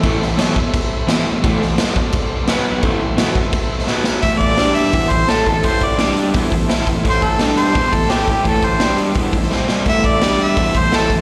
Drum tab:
CC |x---x---x---x---|x---x---x---x---|x---x---x-------|----------------|
HH |----------------|----------------|----------------|o-o-o-o-o-o-o-o-|
SD |--o-o-------o---|--o-o-------o---|----o------oo-o-|---oo-------o---|
BD |o-----o-o-------|o-----o-o-------|o-----o-o-------|o-o-----o-o---o-|

CC |----------------|----------------|----------------|----------------|
HH |o-o-o-o-o-o-o-o-|o-o-o-o-o-o-o-o-|o-o-o-o-o-o-----|o-o-o-o-o-o-o-o-|
SD |----o-------o---|----o------oo---|----o------oo-o-|----o-------o---|
BD |o-o-----o-o---o-|o-o-----o-o---o-|o-o-----o-o-----|o-o-----o-o---o-|